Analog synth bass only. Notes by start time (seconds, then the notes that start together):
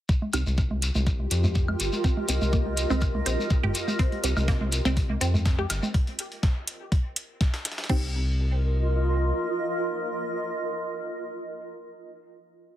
0.33 C2
0.46 C2
0.95 C2
1.31 F2
1.80 G1
2.29 C2
2.42 C2
2.90 C2
3.26 A#1
3.63 G1
4.24 C2
4.37 C2
4.85 C2
5.21 F2
5.70 G1
7.89 C2